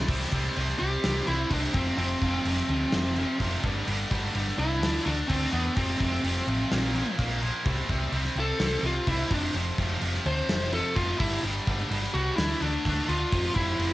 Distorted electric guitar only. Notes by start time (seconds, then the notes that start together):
0.08 C3 G3 C4
0.32 C3 G3 C4
0.56 C3 G3 C4
0.80 C3 G3 C4
1.04 C3 G3 C4
1.28 C3 G3 C4
1.51 C3 G3 C4
1.75 F2 C3 F3
1.99 F2 C3 F3
2.22 F2 C3 F3
2.47 F2 C3 F3
2.69 F2 C3 F3
2.94 F2 C3 F3
3.18 F2 C3 F3
3.40 F2 C3 F3
3.63 G2 D3 G3
3.86 G2 D3 G3
4.10 G2 D3 G3
4.33 G2 D3 G3
4.57 G2 D3 G3
4.80 D3 A3 D4
5.04 D3 A3 D4
5.28 D3 A3 D4
5.51 D3 A3 D4
5.76 F2 C3 F3
5.99 F2 C3 F3
6.23 F2 C3 F3
6.46 F2 C3 F3
6.71 A#2 F3 A#3
6.95 A#2 F3 A#3
7.18 A#2 F3 A#3
7.42 A#2 F3 A#3
7.65 C3 G3 C4
7.89 C3 G3 C4
8.13 C3 G3 C4
8.37 C3 G3 C4
8.59 C3 G3 C4
8.83 C3 G3 C4
9.07 C3 G3 C4
9.30 F2 C3 F3
9.55 F2 C3 F3
9.79 F2 C3 F3
10.01 F2 C3 F3
10.25 F2 C3 F3
10.49 F2 C3 F3
10.73 F2 C3 F3
10.96 F2 C3 F3
11.19 G2 D3 G3
11.43 G2 D3 G3
11.67 G2 D3 G3
11.90 G2 D3 G3
12.14 G2 D3 G3
12.38 D3 A3 D4
12.61 D3 A3 D4
12.85 D3 A3 D4
13.08 D3 A3 D4
13.33 F2 C3 F3
13.56 F2 C3 F3
13.79 F2 C3 F3